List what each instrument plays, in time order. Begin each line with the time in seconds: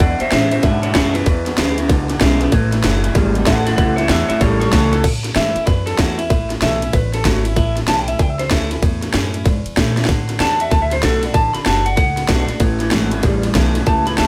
0.00 upright bass E2, clean electric guitar E2 B2 D5 F#5, steel-string acoustic guitar E2, kick, ride
0.20 clean electric guitar E2 B2 C5 E5, muted upright bass stroke, ride
0.31 clean electric guitar E2 C#3 C5 E5, upright bass A2, steel-string acoustic guitar E3 G#3 B3 E4, snare, ride
0.51 clean electric guitar E2 C#3 C5 E5, steel-string acoustic guitar B3 E4, ride
0.63 clean electric guitar E2 D3 E4 C#5, upright bass G#2, steel-string acoustic guitar B2, kick, snare, ride
0.82 clean electric guitar E2 D3 E4 C#5, ride
0.94 clean electric guitar E2 C#3 E4 C#5, upright bass F#2, steel-string acoustic guitar E3 G#3 B3 E4, kick, snare, ride
1.15 clean electric guitar E2 C#3 B4, steel-string acoustic guitar B3 E4, snare, ride
1.26 clean electric guitar E2 B2, upright bass E2, steel-string acoustic guitar E2, kick, ride
1.46 clean electric guitar E2 B2, snare, ride
1.57 upright bass D2, clean electric guitar E2 C#3, steel-string acoustic guitar E3 G#3 B3 E4, snare, ride
1.78 clean electric guitar E2 C#3, steel-string acoustic guitar B3 E4, ride
1.89 upright bass C#2, clean electric guitar E2 D3, steel-string acoustic guitar B2, kick, snare, ride
2.09 clean electric guitar E2 D3, snare, ride
2.21 upright bass B1, clean electric guitar E2 C#3, steel-string acoustic guitar E3 G#3 B3 E4, kick, snare, ride
2.41 clean electric guitar E2 C#3, steel-string acoustic guitar B3 E4, snare, ride
2.52 upright bass A1, clean electric guitar A2 E3, steel-string acoustic guitar A2, kick, ride
2.72 clean electric guitar A2 E3, snare, ride
2.84 upright bass F#1, clean electric guitar A2 F#3, steel-string acoustic guitar E3 A3 C#4 E4, snare, ride
3.04 clean electric guitar A2 F#3, steel-string acoustic guitar C#4 E4, ride
3.15 upright bass G#1, steel-string acoustic guitar E2, clean electric guitar A2 G3, kick, snare, ride
3.35 clean electric guitar A2 G3, ride
3.45 upright bass A1, clean electric guitar A2 F#3 A4 F#5, steel-string acoustic guitar E3 A3 C#4 E4, kick, snare, ride
3.66 clean electric guitar A2 F#3 A4 F#5, steel-string acoustic guitar C#4 E4, snare, ride
3.76 upright bass C#2, clean electric guitar A2 E3 A4 F#5, steel-string acoustic guitar A2, kick, ride
3.96 clean electric guitar A2 E3 C#5 E5, snare, ride
4.09 upright bass E2, clean electric guitar A2 F#3 C#5 E5, steel-string acoustic guitar E3 A3 C#4 E4, snare, ride
4.29 clean electric guitar A2 F#3 C#5 E5, steel-string acoustic guitar C#4 E4, muted upright bass stroke, ride
4.41 upright bass A1, steel-string acoustic guitar E2, clean electric guitar A2 G3 A4 C#5, kick, snare, ride
4.60 clean electric guitar A2 G3 A4 C#5, snare, ride
4.72 upright bass C#2, clean electric guitar A2 F#3 A4 C#5, steel-string acoustic guitar E3 A3 C#4 E4, kick, snare, ride
4.92 clean electric guitar A2 F#3 A4, steel-string acoustic guitar C#4 E4, snare, ride
5.04 steel-string acoustic guitar A2, upright bass A2, kick, crash, ride
5.24 snare, ride
5.35 upright bass G#2, steel-string acoustic guitar E3 A3 C#4 E4, clean electric guitar E5, snare, ride
5.55 steel-string acoustic guitar C#4 E4, muted upright bass stroke, ride
5.66 steel-string acoustic guitar E2, upright bass F#2, clean electric guitar B4, kick, snare, ride
5.86 clean electric guitar A4, snare, ride
5.97 upright bass E2, steel-string acoustic guitar E3 A3 C#4 E4, clean electric guitar F#4, kick, snare, ride
6.18 steel-string acoustic guitar C#4 E4, clean electric guitar E4, ride
6.30 upright bass A1, steel-string acoustic guitar A2, clean electric guitar E4, kick, ride
6.50 snare, ride
6.62 upright bass B1, steel-string acoustic guitar E3 A3 C#4 E4, clean electric guitar E5, snare, ride
6.82 steel-string acoustic guitar C#4 E4, ride
6.93 upright bass A1, steel-string acoustic guitar E2, clean electric guitar B4, kick, ride
7.14 clean electric guitar A4, snare, ride
7.25 upright bass G#1, steel-string acoustic guitar E3 A3 C#4 E4, clean electric guitar F#4, kick, snare, ride
7.44 steel-string acoustic guitar C#4 E4, clean electric guitar E4, ride
7.56 upright bass A1, steel-string acoustic guitar A2, clean electric guitar E4, kick, ride
7.77 snare, ride
7.88 upright bass B1, steel-string acoustic guitar E3 A3 C#4 E4, clean electric guitar A5, snare, ride
7.99 clean electric guitar G5
8.08 steel-string acoustic guitar C#4 E4, clean electric guitar E5, ride
8.19 upright bass C#2, steel-string acoustic guitar E2, clean electric guitar G5, kick, ride
8.29 clean electric guitar E5
8.39 clean electric guitar C5, snare, ride
8.50 upright bass D2, steel-string acoustic guitar E3 A3 C#4 E4, clean electric guitar A4, kick, snare, ride
8.71 steel-string acoustic guitar C#4 E4, snare, ride
8.82 upright bass E2, steel-string acoustic guitar A2, kick, ride
9.02 snare, ride
9.14 upright bass F#2, steel-string acoustic guitar E3 A3 C#4 E4, snare, ride
9.34 steel-string acoustic guitar C#4 E4, ride
9.46 steel-string acoustic guitar E2, upright bass G#2, kick, snare, ride
9.65 muted upright bass stroke, ride
9.77 upright bass A#2, steel-string acoustic guitar E3 A3 C#4 E4, kick, snare, ride
9.97 steel-string acoustic guitar C#4 E4, snare, ride
10.05 upright bass A2, kick, snare, ride
10.09 steel-string acoustic guitar D3
10.29 snare, ride
10.40 upright bass E2, steel-string acoustic guitar D3 A3 D4 F#4, clean electric guitar A5, snare, ride
10.50 clean electric guitar A5
10.60 steel-string acoustic guitar D4 F#4, clean electric guitar E5, ride
10.71 upright bass D2, steel-string acoustic guitar A2, clean electric guitar A5, kick, snare, ride
10.82 clean electric guitar E5
10.91 clean electric guitar C5, snare, ride
11.03 upright bass B1, steel-string acoustic guitar D3 A3 D4 F#4, clean electric guitar A4, kick, snare, ride
11.23 steel-string acoustic guitar D4 F#4, snare, ride
11.34 upright bass A1, steel-string acoustic guitar D3, clean electric guitar A5, kick, ride
11.54 clean electric guitar B5, muted upright bass stroke, snare, ride
11.66 upright bass F#1, steel-string acoustic guitar D3 A3 D4 F#4, clean electric guitar A5, snare, ride
11.86 steel-string acoustic guitar D4 F#4, clean electric guitar F#5, ride
11.97 upright bass C#2, steel-string acoustic guitar A2, clean electric guitar F#5, kick, snare, ride
12.17 snare, ride
12.29 upright bass B1, steel-string acoustic guitar D3 A3 D4 F#4, kick, snare, ride
12.48 steel-string acoustic guitar D4 F#4, muted upright bass stroke, snare, ride
12.60 upright bass A1, steel-string acoustic guitar A2, clean electric guitar A2 E3, kick, ride
12.80 clean electric guitar A2 E3, snare, ride
12.91 upright bass G#1, clean electric guitar A2 F#3, steel-string acoustic guitar E3 A3 C#4 E4, snare, ride
13.11 clean electric guitar A2 F#3, steel-string acoustic guitar C#4 E4, ride
13.23 upright bass A1, steel-string acoustic guitar E2, clean electric guitar A2 G3, kick, snare, ride
13.43 clean electric guitar A2 G3, snare, ride
13.55 upright bass B1, clean electric guitar A2 F#3, steel-string acoustic guitar E3 A3 C#4 E4, kick, snare, ride
13.75 clean electric guitar A2 F#3, steel-string acoustic guitar C#4 E4, snare, ride
13.86 upright bass C#2, clean electric guitar A2 E3 A5, steel-string acoustic guitar A2, kick, ride
14.07 clean electric guitar A2 E3 B5, snare, ride
14.18 upright bass D2, clean electric guitar A2 F#3 A5, steel-string acoustic guitar E3 A3 C#4 E4, snare, ride